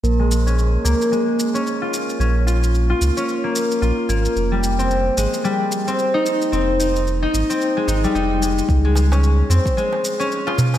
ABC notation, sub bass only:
X:1
M:4/4
L:1/8
Q:"Swing 16ths" 1/4=111
K:Bbdor
V:1 name="Sub bass" clef=bass
B,,,3 D,, z4 | B,,,3 D,, z2 B,,, A,,, | F,,,3 A,,, z4 | F,,,3 A,,, z A,,, F,,,2 |
D,,3 F,, z4 |]